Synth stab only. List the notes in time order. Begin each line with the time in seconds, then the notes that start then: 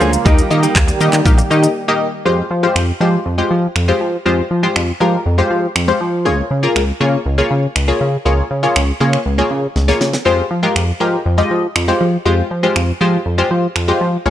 0.25 A#3 D#4 G4 D#5
0.50 A#3 D#4 G4 D#5
1.01 A#3 D#4 G4 D#5
1.26 A#3 D#4 G4 F5
1.50 A#3 D#4 G4 D#5
1.88 A#3 D#4 G4 D#5
2.25 G#3 F4 G4 C5
2.63 G#3 F4 G4 C5
3.01 G#3 F4 G4 C5
3.38 G#3 F4 G4 C5
3.88 G#3 F4 G4 C5
4.25 G#3 F4 G4 C5
4.63 G#3 F4 G4 C5
5.00 G#3 F4 G4 A#4
5.38 G#3 F4 G4 C5
5.88 G#3 F4 G4 C5
6.25 A#3 F4 G#4 C#5
6.63 A#3 F4 G#4 A#4
7.00 A#3 F4 G#4 C#5
7.38 A#3 F4 G#4 C#5
7.88 A#3 F4 G#4 C#5
8.25 A#3 F4 G#4 C#5
8.63 A#3 F4 G#4 C#5
9.00 A#3 F4 G#4 C#5
9.38 A#3 F4 G#4 C#5
9.88 A#3 F4 G#4 C#5
10.25 G#3 F4 G4 C5
10.63 G#3 F4 G4 A#4
11.00 G#3 F4 G4 A#4
11.38 G#3 F4 G4 D#5
11.88 G#3 F4 G4 C5
12.25 G#3 F4 G4 C5
12.63 G#3 F4 G4 C5
13.01 G#3 F4 G4 C5
13.38 G#3 F4 G4 C5
13.88 G#3 F4 G4 C5
14.26 A#3 F4 G#4 C#5